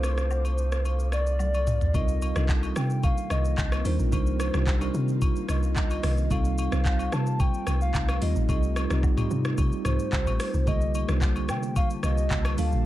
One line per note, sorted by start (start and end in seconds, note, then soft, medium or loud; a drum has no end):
0.00 1.90 C2 medium
0.00 1.90 A3 medium
0.00 1.90 C4 medium
0.00 1.90 D4 medium
0.00 1.96 E4 soft
0.00 1.94 F4 medium
0.00 1.90 A4 medium
0.00 1.91 A4 medium
0.00 1.09 C5 medium
0.00 1.90 F5 medium
0.00 1.90 C6 medium
0.00 1.90 D6 medium
0.00 cross-stick medium
0.00 shaker medium
0.04 high agogo medium
0.18 cross-stick medium
0.18 shaker soft
0.31 low woodblock medium
0.31 shaker medium
0.45 high agogo medium
0.45 shaker soft
0.58 shaker medium
0.72 cross-stick medium
0.72 shaker soft
0.85 high agogo medium
0.85 shaker medium
0.99 shaker medium
1.12 1.96 D5 loud
1.12 cross-stick medium
1.12 high agogo medium
1.12 shaker medium
1.27 shaker medium
1.39 high tom medium
1.39 low woodblock medium
1.39 shaker medium
1.54 high agogo medium
1.54 shaker soft
1.67 mid tom medium
1.67 shaker medium
1.81 floor tom medium
1.81 shaker soft
1.94 2.32 C2 loud
1.94 6.27 C3 medium
1.94 6.27 D#3 medium
1.94 2.27 G3 medium
1.94 6.27 A#3 medium
1.94 2.27 C4 medium
1.94 6.27 C4 medium
1.94 2.27 D#4 medium
1.94 8.45 F4 loud
1.94 2.27 F4 medium
1.94 2.28 A#4 medium
1.94 2.49 D#5 loud
1.94 kick loud
1.94 high agogo medium
1.94 shaker medium
2.08 shaker medium
2.22 high agogo medium
2.22 shaker loud
2.35 2.72 C2 loud
2.35 3.22 G3 medium
2.35 3.23 D4 medium
2.35 3.23 D#4 medium
2.35 3.23 F4 medium
2.35 3.23 A4 medium
2.35 cross-stick loud
2.35 shaker medium
2.49 kick loud
2.49 clap loud
2.49 low woodblock medium
2.49 shaker medium
2.63 high agogo medium
2.63 shaker soft
2.76 3.14 C3 loud
2.76 3.05 G5 loud
2.76 cross-stick loud
2.76 shaker medium
2.90 shaker medium
3.03 3.33 F5 loud
3.03 kick loud
3.03 high agogo medium
3.03 shaker medium
3.18 shaker medium
3.30 3.55 C2 medium
3.30 3.85 D#5 loud
3.30 cross-stick medium
3.30 high agogo medium
3.30 shaker loud
3.45 shaker medium
3.57 3.83 C2 medium
3.57 kick loud
3.57 clap medium
3.57 low woodblock medium
3.57 shaker medium
3.72 cross-stick loud
3.72 high agogo medium
3.72 shaker medium
3.84 3.98 D#2 medium
3.84 4.07 G3 medium
3.84 4.07 D4 medium
3.84 4.07 D#4 medium
3.84 4.08 F4 medium
3.84 4.08 A#4 medium
3.84 3.98 C5 medium
3.84 open hi-hat medium
3.84 shaker loud
3.99 4.11 A#1 medium
3.99 shaker medium
4.12 4.50 C2 loud
4.12 4.45 G3 medium
4.12 4.45 D4 medium
4.12 4.45 D#4 medium
4.12 4.46 F4 medium
4.12 4.46 A#4 medium
4.12 5.18 C5 medium
4.12 kick loud
4.12 high agogo medium
4.12 shaker medium
4.26 shaker medium
4.40 cross-stick medium
4.40 high agogo medium
4.40 shaker loud
4.53 4.90 C2 loud
4.53 4.75 G3 medium
4.53 4.75 D4 medium
4.53 4.76 D#4 medium
4.53 4.76 F4 medium
4.53 4.76 G4 medium
4.53 cross-stick loud
4.53 shaker medium
4.67 kick loud
4.67 clap medium
4.67 low woodblock medium
4.67 shaker medium
4.80 5.68 G3 medium
4.80 5.68 D4 medium
4.80 5.68 D#4 medium
4.80 5.69 F4 medium
4.80 5.69 A#4 loud
4.80 high agogo medium
4.80 shaker medium
4.94 5.32 C3 loud
4.94 shaker medium
5.08 shaker medium
5.22 kick loud
5.22 high agogo medium
5.22 shaker medium
5.36 shaker medium
5.49 5.99 C2 medium
5.49 6.33 D#5 loud
5.49 cross-stick medium
5.49 high agogo medium
5.49 shaker loud
5.63 shaker medium
5.76 kick loud
5.76 clap medium
5.76 low woodblock medium
5.76 shaker medium
5.90 high agogo medium
5.90 shaker medium
6.03 6.28 C2 loud
6.03 cross-stick loud
6.03 open hi-hat medium
6.03 shaker medium
6.17 shaker medium
6.30 6.68 C2 loud
6.30 6.63 G3 medium
6.30 10.63 A3 medium
6.30 6.63 C4 medium
6.30 6.64 D#4 medium
6.30 10.63 D#4 medium
6.30 6.64 F4 medium
6.30 6.64 A4 medium
6.30 7.14 F5 loud
6.30 kick loud
6.30 high agogo medium
6.30 shaker medium
6.45 shaker medium
6.58 high agogo medium
6.58 shaker loud
6.71 7.09 C2 loud
6.71 7.59 G3 medium
6.71 7.59 C4 medium
6.71 7.59 D#4 medium
6.71 7.59 F4 medium
6.71 7.60 C5 medium
6.71 cross-stick loud
6.71 shaker medium
6.85 kick loud
6.85 clap medium
6.85 low woodblock medium
6.85 shaker medium
6.99 high agogo medium
6.99 shaker medium
7.12 7.50 C3 loud
7.12 7.42 A5 loud
7.12 cross-stick loud
7.12 shaker loud
7.27 shaker medium
7.40 7.81 G5 loud
7.40 kick loud
7.40 high agogo medium
7.40 shaker medium
7.54 shaker medium
7.67 7.92 C2 loud
7.67 cross-stick medium
7.67 high agogo medium
7.67 shaker loud
7.81 8.19 F5 loud
7.81 shaker medium
7.94 8.19 C2 loud
7.94 kick loud
7.94 clap medium
7.94 low woodblock medium
7.94 shaker medium
8.09 cross-stick loud
8.09 high agogo medium
8.09 shaker medium
8.21 8.34 D#2 medium
8.21 8.43 G3 medium
8.21 8.43 C4 medium
8.21 8.44 D#4 medium
8.21 8.44 F4 medium
8.21 8.44 G4 medium
8.21 9.00 D#5 medium
8.21 open hi-hat medium
8.21 shaker loud
8.36 8.48 A1 medium
8.36 shaker medium
8.48 8.86 C2 loud
8.48 8.81 G3 medium
8.48 8.82 C4 medium
8.48 8.82 D#4 medium
8.48 8.82 F4 medium
8.48 12.86 G4 loud
8.48 8.82 A4 medium
8.48 kick loud
8.48 high agogo medium
8.48 shaker medium
8.63 shaker medium
8.76 cross-stick loud
8.76 high agogo medium
8.76 shaker loud
8.90 9.27 C2 loud
8.90 9.12 G3 loud
8.90 9.12 C4 medium
8.90 9.12 D#4 medium
8.90 9.12 F4 medium
8.90 9.12 G4 loud
8.90 cross-stick medium
8.90 shaker medium
9.03 kick loud
9.03 low woodblock medium
9.03 shaker medium
9.17 10.04 G3 medium
9.17 10.05 C4 medium
9.17 10.05 D#4 medium
9.17 10.05 F4 medium
9.17 10.05 G4 loud
9.17 mid tom medium
9.17 high agogo medium
9.17 shaker medium
9.31 9.55 C3 loud
9.31 shaker medium
9.45 cross-stick loud
9.45 shaker medium
9.58 9.71 C3 loud
9.58 kick loud
9.58 high agogo medium
9.58 shaker medium
9.72 shaker medium
9.85 9.98 C2 loud
9.85 10.69 C5 loud
9.85 cross-stick medium
9.85 mid tom medium
9.85 high agogo medium
9.85 shaker medium
9.99 shaker medium
10.12 10.25 C2 medium
10.12 kick loud
10.12 clap medium
10.12 low woodblock medium
10.12 shaker medium
10.27 10.38 A1 medium
10.27 high agogo medium
10.27 shaker medium
10.40 cross-stick loud
10.40 open hi-hat medium
10.40 shaker medium
10.54 10.66 C2 medium
10.54 shaker medium
10.66 11.04 C2 loud
10.66 12.86 C3 medium
10.66 12.86 D3 medium
10.66 11.00 D3 medium
10.66 11.00 G3 medium
10.66 11.00 A#3 medium
10.66 12.86 A#3 medium
10.66 12.86 F4 medium
10.66 11.00 F4 medium
10.66 11.00 A4 medium
10.66 11.22 D#5 loud
10.66 12.86 A5 medium
10.66 kick loud
10.66 high agogo medium
10.66 shaker medium
10.81 shaker medium
10.95 high agogo medium
10.95 shaker loud
11.08 11.50 C2 loud
11.08 11.95 G3 medium
11.08 11.95 A#3 medium
11.08 11.96 D4 medium
11.08 11.96 F4 medium
11.08 11.96 C5 medium
11.08 cross-stick loud
11.08 shaker soft
11.21 kick loud
11.21 clap loud
11.21 low woodblock medium
11.21 shaker medium
11.36 high agogo medium
11.36 shaker medium
11.49 11.86 C3 loud
11.49 11.75 G5 loud
11.49 cross-stick loud
11.49 shaker medium
11.63 shaker medium
11.76 11.89 F5 loud
11.76 kick loud
11.76 high agogo medium
11.76 shaker medium
11.90 shaker medium
12.03 12.28 C2 loud
12.03 12.54 D#5 loud
12.03 cross-stick medium
12.03 high agogo medium
12.03 shaker loud
12.18 shaker medium
12.30 12.55 C2 loud
12.30 kick loud
12.30 clap medium
12.30 low woodblock medium
12.30 shaker medium
12.45 cross-stick loud
12.45 high agogo medium
12.45 shaker soft
12.57 12.71 D2 medium
12.57 12.80 G3 medium
12.57 12.80 A#3 medium
12.57 12.80 D4 medium
12.57 12.80 F4 medium
12.57 12.80 A4 medium
12.57 12.86 F5 loud
12.57 open hi-hat medium
12.57 shaker loud
12.72 12.84 A#1 medium
12.72 shaker medium